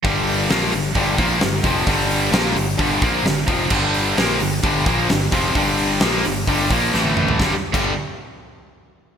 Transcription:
<<
  \new Staff \with { instrumentName = "Distorted electric guitar" } { \clef bass \time 4/4 \key g \minor \tempo 4 = 130 <g, d g>4 <bes, f bes>8 <g, d>8 <g, d g>8 <bes, f bes>8 <g, d>8 <f, c f>8 | <g, d g>4 <bes, f bes>8 <g, d>8 <g, d g>8 <bes, f bes>8 <g, d>8 <f, c f>8 | <g, d g>4 <bes, f bes>8 <g, d>8 <g, d g>8 <bes, f bes>8 <g, d>8 <f, c f>8 | <g, d g>4 <bes, f bes>8 <g, d>8 <g, d g>8 <bes, f bes>8 <a, e a>4 |
<g, d g>16 r8 <g, d g>8 r2 r8. | }
  \new Staff \with { instrumentName = "Distorted electric guitar" } { \clef bass \time 4/4 \key g \minor <g, d g>4 <bes, f bes>8 <g, d>8 <g, d g>8 <bes, f bes>8 <g, d>8 <f, c f>8 | <g, d g>4 <bes, f bes>8 <g, d>8 <g, d g>8 <bes, f bes>8 <g, d>8 <f, c f>8 | <g, d g>4 <bes, f bes>8 <g, d>8 <g, d g>8 <bes, f bes>8 <g, d>8 <f, c f>8 | <g, d g>4 <bes, f bes>8 <g, d>8 <g, d g>8 <bes, f bes>8 <a, e a>4 |
<g, d g>16 r8 <g, d g>8 r2 r8. | }
  \new Staff \with { instrumentName = "Distorted electric guitar" } { \clef bass \time 4/4 \key g \minor <g, d g>4 <bes, f bes>8 <g, d>8 <g, d g>8 <bes, f bes>8 <g, d>8 <f, c f>8 | <g, d g>4 <bes, f bes>8 <g, d>8 <g, d g>8 <bes, f bes>8 <g, d>8 <f, c f>8 | <g, d g>4 <bes, f bes>8 <g, d>8 <g, d g>8 <bes, f bes>8 <g, d>8 <f, c f>8 | <g, d g>4 <bes, f bes>8 <g, d>8 <g, d g>8 <bes, f bes>8 <a, e a>4 |
<g, d g>16 r8 <g, d g>8 r2 r8. | }
  \new Staff \with { instrumentName = "Fingered electric bass" } { \clef bass \time 4/4 \key g \minor g,,4 bes,,8 g,,8 g,,8 bes,,8 g,,8 f,,8 | g,,4 bes,,8 g,,8 g,,8 bes,,8 g,,8 f,,8 | g,,4 bes,,8 g,,8 g,,8 bes,,8 g,,8 f,,8 | g,,4 bes,,8 g,,8 g,,8 bes,,8 a,,4 |
g,,16 r8 g,,8 r2 r8. | }
  \new DrumStaff \with { instrumentName = "Drums" } \drummode { \time 4/4 <hho bd>8 hho8 <hho sn>8 hho8 <hho bd>8 <hho bd>8 <hho sn>8 <hho bd>8 | <hho bd>8 hho8 <hho sn>8 hho8 <hho bd>8 <hho bd>8 <hho sn>8 <hho bd>8 | <cymc bd>8 hho8 <hho sn>8 hho8 <hho bd>8 <hho bd>8 <hho sn>8 <hho bd>8 | <hho bd>8 hho8 <hho sn>8 hho8 <hho bd>8 <hho bd>8 sn16 tommh16 toml16 tomfh16 |
<bd sn>8. <cymc bd>16 r4 r4 r4 | }
>>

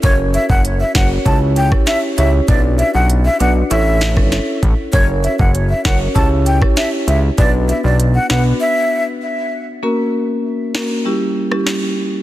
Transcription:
<<
  \new Staff \with { instrumentName = "Flute" } { \time 4/4 \key fis \phrygian \tempo 4 = 98 cis''16 r16 e''16 fis''16 r16 e''16 fis''16 r16 a''16 r16 g''16 r16 e''16 r16 e''16 r16 | d''16 r16 e''16 fis''16 r16 e''16 fis''16 r16 e''8. r4 r16 | cis''16 r16 e''16 fis''16 r16 e''16 fis''16 r16 a''16 r16 g''16 r16 e''16 r16 e''16 r16 | d''16 r16 e''16 d''16 r16 fis''16 fis''16 r16 e''8. r4 r16 |
r1 | }
  \new Staff \with { instrumentName = "Marimba" } { \time 4/4 \key fis \phrygian <cis' fis' ais' cis''>4 r8 <cis' fis' ais' cis''>16 r16 <cis' e' g' cis''>8. <cis' e' g' cis''>16 r8 <cis' e' g' cis''>16 r16 | <d' fis' b' d''>4 r8 <d' fis' b' d''>16 r16 <cis' e' a' cis''>8. <cis' e' a' cis''>16 r4 | <cis' fis' ais' cis''>4 r8 <cis' fis' ais' cis''>16 r16 <cis' e' g' cis''>8. <cis' e' g' cis''>16 r4 | <b d' fis' b'>4 r8 <b d' fis' b'>16 r2 r16 |
<ais cis' fis' ais'>4 r8 <ais cis' fis' ais'>16 r16 <g cis' e' g'>8. <g cis' e' g'>16 r4 | }
  \new Staff \with { instrumentName = "Analog synth bass" } { \clef bass \time 4/4 \key fis \phrygian fis,,8. fis,,8. fis,,8 cis,4 r8 cis,8 | b,,8. b,,8. b,,8 a,,8. g,,8 r16 a,,16 r16 | fis,,8. fis,,8. fis,,8 cis,4 r8 cis,8 | b,,8. b,,8. b,,8 r2 |
r1 | }
  \new DrumStaff \with { instrumentName = "Drums" } \drummode { \time 4/4 <hh bd>8 hh16 bd16 hh8 <hh bd sn>8 <hh bd>8 hh16 <bd ss>16 <hh sn>8 hh8 | <hh bd>8 hh8 hh8 hh8 hh8 <hh sn>16 <bd ss>16 <hh sn>8 <hh bd>8 | <hh bd>8 hh16 bd16 hh8 <hh bd sn>8 <hh bd>8 hh16 <bd ss>16 <hh sn>8 hh8 | <hh bd>8 hh8 hh8 <hh sn>8 r4 r4 |
r4 r8 sn8 r8. ss16 sn4 | }
>>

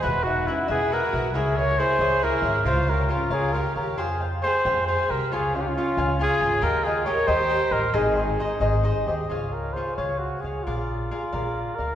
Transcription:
<<
  \new Staff \with { instrumentName = "Cavaquinho" } { \time 6/8 \key aes \major \tempo 4. = 90 <fis' b' e'' fis''>8 <b' e'' fis''>8 <fis' b' e'' fis''>8 <fis' b' e'' fis''>8 <fis' b' e'' fis''>8 <b' e'' fis''>8 | <fes' aes' des'' fes''>8 <aes' des'' fes''>8 <fes' aes' des'' fes''>8 <fes' aes' des'' fes''>8 <fes' aes' des'' fes''>8 <aes' des'' fes''>8 | <f' bes' des'' f''>8 <bes' des'' f''>8 <f' bes' des'' f''>8 <f' bes' des'' f''>8 <f' bes' des'' f''>8 <bes' des'' f''>8 | <aes' c'' f'' g''>8 <c'' f'' g''>8 <aes' c'' f'' g''>8 <aes' c'' f'' g''>8 <aes' c'' f'' g''>8 <c'' f'' g''>8 |
<f' des'' f'' aes''>8 <des'' f'' aes''>8 <f' des'' f'' aes''>8 <f' des'' f'' aes''>8 <f' des'' f'' aes''>8 <des'' f'' aes''>8 | <g' bes' ees'' g''>8 <bes' ees'' g''>8 <g' bes' ees'' g''>8 <g' bes' ees'' g''>8 <g' bes' ees'' g''>8 <bes' ees'' g''>8 | <ees' aes' c'' ees''>8 <aes' c'' ees''>8 <ees' aes' c'' ees''>8 <ees' aes' c'' ees''>8 <ees' aes' c'' ees''>8 <aes' c'' ees''>8 | \key des \major <f' aes' des'' f''>4 <f' aes' des'' f''>8 <f' aes' des'' f''>4 <aes' des'' f''>8 |
<aes' bes' d'' f''>4 <aes' bes' d'' f''>8 <aes' bes' d'' f''>4 <bes' d'' f''>8 | }
  \new Staff \with { instrumentName = "Trumpet" } { \time 6/8 \key aes \major b'8 fis'8 e'8 aes'8 bes'4 | aes'8 des''8 c''4 bes'4 | c''8 bes'8 f'8 aes'8 bes'8 bes'8 | aes'8 r8 c''4 c''8 bes'8 |
aes'8 f'32 g'32 f'16 f'4 aes'4 | bes'8 aes'8 des''8 c''4 bes'8 | aes'2 r8 g'8 | \key des \major aes'8 bes'8 c''8 des''8 ges'8 aes'8 |
f'2~ f'8 bes'8 | }
  \new Staff \with { instrumentName = "Violin section" } { \time 6/8 \key aes \major fis'8 ees'8 des'8 e'8 fis'4 | fes'8 bes'8 aes'4 fes'4 | f'8 g'8 des'8 f'8 g'8 g'8 | f'8 r8 aes'4 aes'8 g'8 |
f'8 des'32 ees'32 des'16 des'4 f'4 | g'8 f'8 bes'8 g'4 g'8 | ees'2 r4 | \key des \major r2. |
r2. | }
  \new Staff \with { instrumentName = "Upright bass" } { \clef bass \time 6/8 \key aes \major e,,4. e,,4 b,,8 | des,4. des,4 aes,,8 | des,4. des,4 ees,8 | f,4. f,4 c,8 |
des,4. des,4 aes,,8 | ees,4. ees,4 a,,8 | aes,,4. aes,,4 ees,8 | \key des \major des,4. des,4 des,8 |
bes,,4. bes,,4 d,8 | }
>>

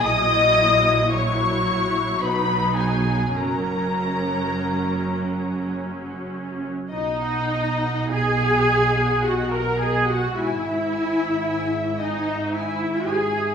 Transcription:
<<
  \new Staff \with { instrumentName = "Violin section" } { \time 3/4 \key b \major \tempo 4 = 54 dis'''4 cis'''4 b''8 gis''8 | ais''2 r4 | dis''16 fis''16 dis''16 fis''16 dis''16 fis''16 dis''16 fis''16 dis''16 fis''16 dis''16 fis''16 | gis''16 e''16 gis''16 e''16 gis''16 e''16 gis''16 e''16 gis''16 e''16 gis''16 e''16 | }
  \new Staff \with { instrumentName = "Violin section" } { \time 3/4 \key b \major dis''4 cis''4 b'8 gis'8 | ais'2 r4 | dis''4 gis''4 fis''16 ais''16 gis''16 fis''16 | e''4. dis''8 e''8 gis''8 | }
  \new Staff \with { instrumentName = "Viola section" } { \time 3/4 \key b \major <fis e'>4 <fis e'>4 <fis dis'>4 | <fis cis'>2. | dis'4 gis'4 fis'16 ais'16 gis'16 fis'16 | e'4. dis'8 e'8 gis'8 | }
  \new Staff \with { instrumentName = "Cello section" } { \clef bass \time 3/4 \key b \major ais,2 b,4 | fis,2. | b,2. | gis,2. | }
  \new Staff \with { instrumentName = "Double bass section" } { \clef bass \time 3/4 \key b \major ais,,2 b,,4 | fis,,2. | b,,2. | gis,,2. | }
>>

